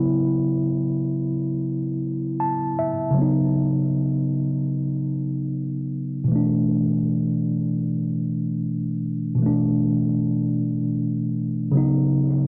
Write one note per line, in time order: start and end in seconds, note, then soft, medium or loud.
0.00 2.73 C#3 medium
0.00 2.74 F#3 medium
0.00 2.76 B3 medium
0.00 2.78 E4 medium
2.40 2.76 A5 medium
2.79 3.15 E5 medium
3.10 6.22 C#3 medium
3.10 6.24 F#3 medium
3.18 6.25 B3 medium
3.18 6.27 D#4 medium
6.24 9.34 B2 medium
6.24 9.36 E3 medium
6.32 9.38 A3 medium
6.32 9.40 D4 medium
9.35 11.68 B2 medium
9.35 11.69 E3 medium
9.43 11.71 A3 medium
9.43 11.73 D4 medium
11.72 12.47 C#3 medium
11.72 12.47 F#3 medium
11.72 12.47 B3 medium
11.77 12.47 D#4 medium